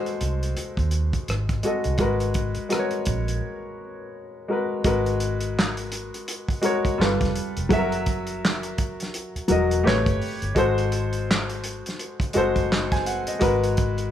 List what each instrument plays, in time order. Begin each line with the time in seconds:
Already playing: grand piano G#3 F#4 A4 C5
0.06 closed hi-hat
0.21 fingered electric bass C2, closed hi-hat
0.43 closed hi-hat
0.57 muted fingered electric bass stroke, closed hi-hat
0.77 fingered electric bass D#2, kick, closed hi-hat
0.91 closed hi-hat
1.13 kick, closed hi-hat
1.28 fingered electric bass G#1, cross-stick, closed hi-hat
1.49 kick, cross-stick, closed hi-hat
1.63 grand piano G#3 F#4 A4 D#5, closed hi-hat
1.84 fingered electric bass C2, closed hi-hat
1.98 fingered electric bass G#1, grand piano G#3 F#4 A#4, kick, closed hi-hat
2.02 grand piano B4
2.20 closed hi-hat
2.34 kick, closed hi-hat
2.55 muted fingered electric bass stroke, closed hi-hat
2.69 grand piano G#3 F#4 A#4 B4, cross-stick, closed hi-hat
2.79 grand piano C#5
2.91 closed hi-hat
3.05 fingered electric bass A#1, kick, closed hi-hat
3.28 closed hi-hat
4.48 grand piano G#3 F#4 A#4
4.52 grand piano B4
4.84 fingered electric bass G#1, grand piano G#3 F#4 A#4 B4, kick, closed hi-hat
5.06 closed hi-hat
5.20 closed hi-hat
5.41 closed hi-hat
5.59 snare, clap
5.77 closed hi-hat
5.92 closed hi-hat
6.14 closed hi-hat
6.28 closed hi-hat
6.49 kick, closed hi-hat
6.62 grand piano G#3 F#4 A#4 C#5, closed hi-hat
6.85 kick, closed hi-hat
6.98 fingered electric bass G1, grand piano G3 F4 A4 B4, snare
7.02 clap
7.21 fingered electric bass F1, kick, snare, closed hi-hat
7.36 closed hi-hat
7.57 fingered electric bass F1, closed hi-hat
7.69 fingered electric bass F#1, grand piano F#3 F#4 A4, kick, closed hi-hat
7.73 grand piano E5
7.78 grand piano A#4
7.92 closed hi-hat
8.06 kick, closed hi-hat
8.27 closed hi-hat
8.45 snare, clap
8.63 closed hi-hat
8.78 kick, closed hi-hat
9.00 snare, closed hi-hat
9.14 closed hi-hat
9.36 muted fingered electric bass stroke, closed hi-hat
9.48 fingered electric bass E1, grand piano F#3 F#4 A#4 D#5, closed hi-hat
9.71 closed hi-hat
9.83 fingered electric bass A1, grand piano A3 G4 B4 C#5
9.88 snare, clap
10.06 fingered electric bass G1, kick, closed hi-hat
10.21 open hi-hat
10.42 fingered electric bass G1, closed hi-hat
10.55 fingered electric bass G#1, grand piano G#3 F#4 A4 C5, kick, closed hi-hat
10.78 closed hi-hat
10.92 closed hi-hat
11.13 closed hi-hat
11.31 snare, clap
11.49 closed hi-hat
11.64 closed hi-hat
11.86 snare, closed hi-hat
11.99 closed hi-hat
12.20 kick, closed hi-hat
12.33 fingered electric bass F#1, grand piano G#3 F#4 A4, closed hi-hat
12.37 grand piano C5
12.56 kick, closed hi-hat
12.72 snare, clap
12.92 grand piano G#5, kick, snare, closed hi-hat
13.06 grand piano F#5, closed hi-hat
13.27 grand piano D#5, closed hi-hat
13.39 fingered electric bass G#1, grand piano G#3 F#4 A#4 B4, kick, closed hi-hat
13.64 closed hi-hat
13.77 kick, closed hi-hat
13.98 closed hi-hat